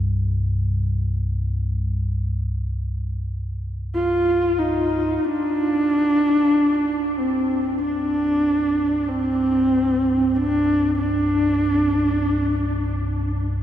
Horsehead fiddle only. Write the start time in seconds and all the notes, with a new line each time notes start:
3.95 F4
4.59 D#4
5.25 D4
7.18 C4
7.82 D4
9.08 C4
10.35 D4
10.98 D4